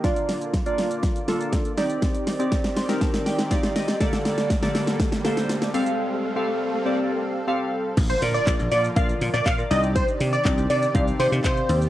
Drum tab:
CC |----------------|----------------|----------------|----------------|
HH |xxoxxxoxxxoxxxox|xxoxxxoxxxoxxxox|xxoxxxoxxxoxxxox|----------------|
SH |xxxxxxxxxxxxxxxx|xxxxxxxxxxxxxxxx|xxxxxxxxxxxxxxxx|----------------|
CP |----------------|----------------|----------------|----------------|
SD |o-o-o-o-o-o-o-o-|o-o-oooooooooooo|oooooooooooooo--|----------------|
BD |o---o---o---o---|o---o---o---o---|o---o---o-------|----------------|

CC |x---------------|----------------|
HH |x-o-x-o-x-o-x-o-|x-o-x-o-x-o-x-o-|
SH |xxxxxxxxxxxxxxxx|xxxxxxxxxxxxxxxx|
CP |----x-------x---|----x-------x---|
SD |----------------|----------------|
BD |o---o---o---o---|o---o---o---o---|